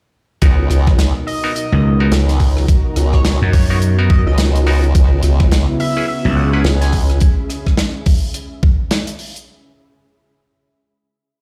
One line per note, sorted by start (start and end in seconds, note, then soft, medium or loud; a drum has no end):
0.42 0.69 C#2 loud
0.42 4.91 B2 medium
0.42 1.27 B3 loud
0.42 1.27 D#4 medium
0.42 4.91 D#4 medium
0.42 1.27 F#4 loud
0.42 1.27 A#4 loud
0.42 4.91 A#4 medium
0.42 kick loud
0.42 closed hi-hat medium
0.66 5.77 F#4 medium
0.66 cross-stick medium
0.70 1.13 C#2 medium
0.70 closed hi-hat medium
0.87 kick loud
0.87 cross-stick medium
0.98 4.95 A#5 medium
0.98 snare loud
0.98 closed hi-hat loud
1.16 4.95 D#5 medium
1.27 1.53 D#5 medium
1.27 open hi-hat medium
1.44 1.52 B3 medium
1.44 1.52 D#4 medium
1.44 1.52 F#4 medium
1.44 1.52 A#4 loud
1.55 2.00 D#5 medium
1.55 closed hi-hat medium
1.72 2.10 C#2 medium
2.00 2.15 B3 medium
2.00 2.15 D#4 medium
2.00 2.15 F#4 medium
2.00 2.15 A#4 loud
2.12 2.67 C#2 loud
2.12 snare loud
2.12 closed hi-hat loud
2.28 snare soft
2.28 closed hi-hat medium
2.40 kick medium
2.40 open hi-hat medium
2.57 cross-stick medium
2.68 kick loud
2.68 closed hi-hat medium
2.96 3.39 C#2 loud
2.96 cross-stick medium
2.96 closed hi-hat medium
3.13 3.21 C#5 medium
3.13 kick medium
3.13 cross-stick medium
3.25 3.36 C#5 medium
3.25 snare loud
3.25 closed hi-hat medium
3.42 4.24 F#2 medium
3.53 3.64 C#5 medium
3.53 kick loud
3.53 open hi-hat medium
3.70 3.79 B3 medium
3.70 3.79 D#4 medium
3.70 3.79 F#4 medium
3.70 3.79 A#4 loud
3.70 3.78 C#5 medium
3.82 closed hi-hat medium
3.99 4.64 B3 medium
3.99 4.64 D#4 medium
3.99 4.64 F#4 medium
3.99 4.64 A#4 loud
4.10 4.21 D#5 medium
4.10 kick loud
4.26 4.93 C#2 loud
4.26 4.34 D#5 medium
4.38 snare loud
4.38 closed hi-hat loud
4.56 closed hi-hat medium
4.66 4.86 B3 loud
4.66 4.86 D#4 medium
4.66 4.86 F#4 medium
4.66 4.86 A#4 loud
4.66 open hi-hat medium
4.84 closed hi-hat medium
4.94 5.21 C#2 loud
4.94 7.19 C#3 medium
4.94 7.19 B3 medium
4.94 7.21 C#4 medium
4.94 7.19 E4 medium
4.94 kick loud
4.94 closed hi-hat loud
5.23 5.66 C#2 loud
5.23 cross-stick medium
5.23 closed hi-hat medium
5.40 kick loud
5.40 cross-stick medium
5.45 7.21 G#4 medium
5.52 snare loud
5.52 closed hi-hat medium
5.60 7.22 B5 medium
5.80 6.06 E5 medium
5.80 open hi-hat medium
5.97 6.05 C#4 medium
5.97 6.05 E4 medium
5.97 6.05 G#4 medium
5.97 6.05 B4 loud
6.08 6.36 E5 loud
6.25 6.63 C#2 loud
6.36 6.47 F#5 medium
6.53 6.68 C#4 medium
6.53 6.68 E4 medium
6.53 6.68 G#4 medium
6.53 6.68 B4 medium
6.53 6.60 F#5 medium
6.64 7.19 C#2 loud
6.64 snare loud
6.64 closed hi-hat medium
6.81 6.97 G#5 loud
6.81 snare soft
6.81 closed hi-hat medium
6.92 kick medium
6.92 open hi-hat medium
7.10 cross-stick soft
7.10 closed hi-hat soft
7.20 kick loud
7.20 closed hi-hat medium
7.50 cross-stick soft
7.50 closed hi-hat medium
7.67 kick medium
7.67 cross-stick medium
7.77 snare loud
7.77 closed hi-hat medium
8.06 kick loud
8.06 open hi-hat medium
8.09 open hi-hat medium
8.11 open hi-hat soft
8.14 open hi-hat soft
8.20 open hi-hat soft
8.34 closed hi-hat loud
8.63 kick loud
8.91 snare loud
8.91 closed hi-hat medium
9.07 closed hi-hat medium
9.19 open hi-hat medium
9.36 closed hi-hat soft